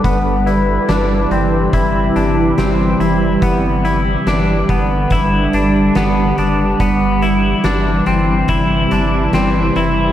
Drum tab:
HH |xxxxxxxx|xxxxxxxx|xxxxxxxx|
SD |--o---o-|--o---o-|--o---o-|
BD |o---o---|o--oo---|o---o---|